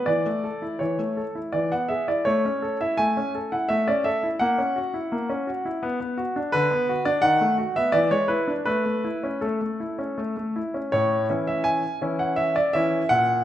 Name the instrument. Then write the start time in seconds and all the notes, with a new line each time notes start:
grand piano
0.06 E3 D5
0.26 A3
0.44 A4
0.62 E4
0.79 E3 C#5
0.99 A3
1.17 A4
1.35 E4
1.52 E3 D5
1.72 B3 F#5
1.88 G#4 E5
2.08 E4 D5
2.25 A3 C#5
2.45 C#4
2.62 A4
2.81 E4 E5
2.97 A3 G#5
3.17 C#4
3.35 A4
3.52 E4 F#5
3.69 A3 E5
3.88 C#4 D5
4.04 A4 E5
4.23 E4
4.39 A#3 F#5
4.58 C#4
4.76 F#4
4.94 E4
5.12 A#3
5.30 C#4
5.47 F#4
5.65 E4
5.83 B3
6.00 B3
6.17 F#4
6.36 D4
6.52 D3 B4
6.71 B3
6.89 F#4
7.05 D4 D5
7.22 D#3 F#5
7.41 A3
7.58 F#4
7.76 B3 E5
7.92 E3 D5
8.11 G#3 C#5
8.28 E4 B4
8.48 D4
8.65 A3 B4
8.86 A3
9.04 E4
9.23 C#4
9.41 A3 A4
9.61 A3
9.80 E4
9.99 C#4
10.18 A3
10.37 A3
10.56 E4
10.74 C#4
10.92 A2 C#5
11.30 E3 C#4 E4
11.47 E5
11.64 G#5
12.01 E3 C#4 E4
12.19 F#5
12.36 E5
12.56 D5
12.73 E3 C#4 E4 E5
13.09 A#2 F#5